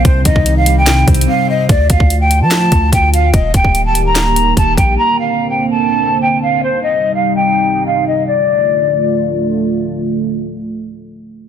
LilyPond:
<<
  \new Staff \with { instrumentName = "Flute" } { \time 4/4 \key d \phrygian \tempo 4 = 146 c''8 ees''8. f''8 g''4~ g''16 f''8 ees''8 | d''8 f''8. g''8 a''4~ a''16 g''8 f''8 | ees''8 g''8. a''8 bes''4~ bes''16 a''8 g''8 | bes''8 f''8. g''8 a''4~ a''16 g''8 f''8 |
c''8 ees''8. f''8 g''4~ g''16 f''8 ees''8 | d''2. r4 | r1 | }
  \new Staff \with { instrumentName = "Analog synth pad" } { \time 4/4 \key d \phrygian <c g ees'>1 | <d a f'>1 | <ees bes g'>1 | <d bes c'>1 |
<c g ees'>1 | <d a f'>1~ | <d a f'>1 | }
  \new Staff \with { instrumentName = "Clean electric guitar" } { \clef bass \time 4/4 \key d \phrygian c8 ees8 c8 g8 c8 c'8 c8 c''8 | r1 | r1 | r1 |
r1 | r1 | r1 | }
  \new Staff \with { instrumentName = "808-style bass" } { \clef bass \time 4/4 \key d \phrygian c,8 c,2 c,8 r4 | d,8 d,4~ d,16 f8. d,8 d,4 | ees,,8 d,,2~ d,,8 ees,,8 bes,,8 | r1 |
r1 | r1 | r1 | }
  \new DrumStaff \with { instrumentName = "Drums" } \drummode { \time 4/4 <hh bd>8 <hh bd>16 bd16 hh8 hh8 \tuplet 3/2 { <hc hh sn>16 r16 r16 <hh bd>16 hh16 hh16 } r4 | <hh bd>8 <hh bd>16 bd16 hh8 hh8 <hc hh sn>8 <hh bd>8 <hh bd>8 hh8 | <hh bd>8 <hh bd>16 bd16 hh8 hh8 <hc hh sn>8 hh8 <hh bd>8 <hh bd>8 | r4 r4 r4 r4 |
r4 r4 r4 r4 | r4 r4 r4 r4 | r4 r4 r4 r4 | }
>>